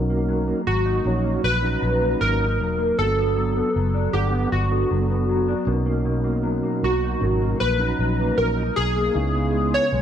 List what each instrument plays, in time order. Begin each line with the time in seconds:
Already playing: fingered electric bass B1, clean electric guitar F#3, tonewheel organ C#4 D#4 F#4 A#4
0.10 clean electric guitar A#3
0.28 clean electric guitar F#3
0.48 clean electric guitar A#3
0.67 fingered electric bass G#1, clean electric guitar F#3, synth keys F#4
0.86 clean electric guitar D#4
1.05 fingered electric bass A#1, clean electric guitar F#3, tonewheel organ C#4 D#4 F#4 C#5
1.24 clean electric guitar A#3
1.44 fingered electric bass A#1, synth keys B4
1.62 tonewheel organ C#4 D#4 F#4 A#5
1.82 fingered electric bass A#1, clean electric guitar F#3
2.01 clean electric guitar A#3
2.20 fingered electric bass G#1, clean electric guitar F#3, synth keys A#4
2.39 clean electric guitar D#4
2.60 fingered electric bass E1, clean electric guitar F#3
2.78 clean electric guitar A#3
2.97 fingered electric bass G1, tonewheel organ B3 D4 F#4 A4, synth keys A4
3.17 clean electric guitar B3
3.37 clean electric guitar F#3
3.56 clean electric guitar B3
3.76 fingered electric bass F#1, clean electric guitar F#3
3.94 clean electric guitar D4
4.13 fingered electric bass G1, tonewheel organ B3 D4 A4 F#5, synth keys G4
4.33 clean electric guitar B3
4.52 fingered electric bass G1, synth keys F#4
4.69 tonewheel organ B3 D4 F#4 A4, clean electric guitar B3
4.90 fingered electric bass F#1, clean electric guitar F#3
5.10 clean electric guitar B3
5.29 clean electric guitar F#3
5.48 clean electric guitar D4
5.65 fingered electric bass B1, clean electric guitar B2, tonewheel organ C#4 D4 F#4 A#4
5.73 tonewheel organ D#4
5.86 clean electric guitar A#3
6.05 clean electric guitar B2
6.24 clean electric guitar A#3
6.43 clean electric guitar F#3
6.63 clean electric guitar A#3
6.83 fingered electric bass B1, clean electric guitar F#3, synth keys F#4
7.04 clean electric guitar D#4
7.20 fingered electric bass G#1, clean electric guitar F#3, tonewheel organ C#4 D#4 F#4 A#4
7.42 clean electric guitar A#3
7.60 fingered electric bass A#1, synth keys B4
7.78 tonewheel organ C#4 D#4 F#4 A#5
7.99 fingered electric bass A#1, clean electric guitar F#3
8.21 clean electric guitar A#3
8.37 fingered electric bass A#1, clean electric guitar F#3, synth keys A#4
8.57 clean electric guitar D#4
8.76 fingered electric bass B1, clean electric guitar F#3, synth keys G#4
8.96 clean electric guitar A#3
9.13 fingered electric bass C#2, clean electric guitar C#3, tonewheel organ B3 D#4 E4 G#4
9.34 clean electric guitar B3
9.53 clean electric guitar G#3
9.72 clean electric guitar B3, synth keys C#5
9.92 fingered electric bass B1, clean electric guitar G#3